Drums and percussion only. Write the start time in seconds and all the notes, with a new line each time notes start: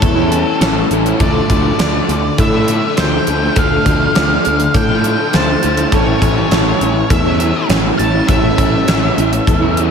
0.02 kick, closed hi-hat
0.32 closed hi-hat
0.61 snare, closed hi-hat
0.91 closed hi-hat
1.06 closed hi-hat
1.20 kick, closed hi-hat
1.50 kick, closed hi-hat
1.79 snare, closed hi-hat
2.09 closed hi-hat
2.38 kick, closed hi-hat
2.68 closed hi-hat
2.97 snare, closed hi-hat
3.27 closed hi-hat
3.56 kick, closed hi-hat
3.86 kick, closed hi-hat
4.15 snare, closed hi-hat
4.45 closed hi-hat
4.60 closed hi-hat
4.74 kick, closed hi-hat
5.04 closed hi-hat
5.33 snare, closed hi-hat
5.63 closed hi-hat
5.77 closed hi-hat
5.92 kick, closed hi-hat
6.22 kick, closed hi-hat
6.51 snare, closed hi-hat
6.81 closed hi-hat
7.10 kick, closed hi-hat
7.40 closed hi-hat
7.70 snare, closed hi-hat
7.99 closed hi-hat
8.29 kick, closed hi-hat
8.58 kick, closed hi-hat
8.88 snare, closed hi-hat
9.18 closed hi-hat
9.33 closed hi-hat
9.47 kick, closed hi-hat
9.77 closed hi-hat